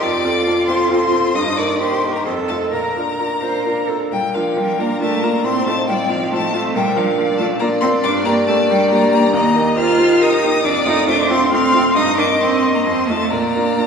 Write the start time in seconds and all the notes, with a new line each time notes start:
0.02 F2 F4 D5 D6
0.24 C4 F4 A4
0.47 C4 F4 A4
0.67 C4 F4 A4 C5 C6
0.90 C4 F4 A4 C5 C6
1.12 C4 F4 A4
1.35 G2 D#4 D#5 D#6
1.57 A#3 D#4 A#4 D5 D6
1.79 A#3 D#4 G4 A#4 C5 C6
2.04 A#3 D#4 A#4
2.13 A#4 A#5
2.24 F2 A4 C5 C6
2.48 A3 D#4 F4 A4 A5
2.70 A#2 A#4 A#5
2.97 A#3 D4 F4
3.19 A#3 D4 F4 A#4
3.42 A#3 D4 F4 C5
3.65 A#3 D4 F4 A#4
3.89 A#3 D4 F4 A4
4.12 A#2 G3 G5
4.34 F3 A#3 D4 F4 F5
4.56 G3 A#3 D4 F4 A#4 G5
4.78 A#3 D4 F4 A#5
5.00 A3 A#3 D4 F4 A5
5.22 A#3 D4 F4 A#5
5.44 A2 C4 C5 C6
5.66 A3 C4 D#4 F4 A5
5.88 G3 C4 D#4 F4 D5 G5
6.09 F3 C4 D#4 F4 F5
6.31 A3 C4 D#4 F4 C5 A5
6.54 A3 C4 D#4 F4 A5
6.74 A#2 G3 A#4 G5
6.95 F3 A#3 D4 F4 F5
7.17 A#3 D4 F4 D5
7.38 A3 A#3 D4 F4 A5
7.59 A#3 D4 F4 D5 A#5
7.81 A#3 C4 D4 F4 C6
8.03 G2 D4 D6
8.25 A#3 D4 G4 A#5
8.47 A3 A#3 D4 G4 A5
8.69 G3 A#3 D4 G4 G5
8.91 A#3 D4 G4 A#5
9.12 A#3 D4 G4 A#5
9.33 D#2 A#3 D#5 A#5
9.56 A#3 D#4 G4
9.77 A#3 D#4 F4 G4 C5 F6
9.99 A#3 D#4 G4
10.21 A#3 D#4 G4 A#4 D#6
10.43 A#3 D#4 G4
10.63 F2 D4 D5 D6
10.86 A3 C4 D#4 F4 D#6
11.07 A3 C4 D4 F4 C5 D6
11.30 A3 C4 F4 C6
11.51 A3 C4 F4 F5 C6
11.73 A3 C4 F4
11.95 G2 D#4 D#5 D#6
12.17 A#3 D4 D#4 D6
12.40 A#3 C4 D#4 C6
12.63 A#3 D#4
12.75 A#3 A#5
12.85 F2 C4 C6
13.08 A3 D#4 F4 A5
13.30 A#2 A#3 D5 A#5
13.55 A#3 D4 F4
13.78 A#3 D4 F4